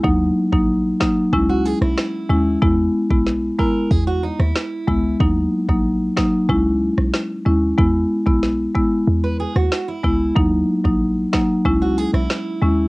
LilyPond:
<<
  \new Staff \with { instrumentName = "Steel-string acoustic guitar" } { \time 4/4 \key des \dorian \tempo 4 = 93 r2 r16 ges'16 aes'16 fes'4~ fes'16 | r4. bes'8 aes'16 ges'16 ees'16 fes'4~ fes'16 | r1 | r2 r16 ces''16 aes'16 ges'8 fes'8. |
r2 r16 ges'16 aes'16 fes'4~ fes'16 | }
  \new Staff \with { instrumentName = "Marimba" } { \time 4/4 \key des \dorian <ges bes ees'>8. <ges bes ees'>8. <ges bes ees'>8 <aes des' fes'>4. <aes des' fes'>16 r16 | <aes ces' fes'>8. <aes ces' fes'>8. <aes ces' fes'>8 r4. <aes ces' fes'>16 r16 | <ges bes ees'>8. <ges bes ees'>8. <ges bes ees'>8 <aes des' fes'>4. <aes des' fes'>16 r16 | <aes ces' fes'>8. <aes ces' fes'>8. <aes ces' fes'>8 r4. <aes ces' fes'>16 r16 |
<ges bes ees'>8. <ges bes ees'>8. <ges bes ees'>8 <aes des' fes'>4. <aes des' fes'>16 r16 | }
  \new Staff \with { instrumentName = "808-style bass" } { \clef bass \time 4/4 \key des \dorian ees,8 r16 bes,,8. r8 des,8. ces,16 r8 ees,8 | fes,8 r16 ces,8. r8 fes,8. ees,16 r8 des,8 | ees,8 r16 bes,,8. r8 des,8. ces,16 r8 ees,8 | fes,8 r16 ces,8. r8 fes,8. ees,16 r8 des,8 |
ees,8 r16 bes,,8. r8 des,8. ces,16 r8 ees,8 | }
  \new DrumStaff \with { instrumentName = "Drums" } \drummode { \time 4/4 bd8. bd16 r8 <bd ss sn>8 bd8. ss16 <ss sn>4 | bd8. bd16 sn8 bd8 bd8. ss16 <ss sn>8 bd8 | bd8. bd16 r8 <bd ss sn>8 bd8. ss16 <ss sn>4 | bd8. bd16 sn8 bd8 r8. ss16 <ss sn>8 bd8 |
bd8. bd16 r8 <bd ss sn>8 bd8. ss16 <ss sn>4 | }
>>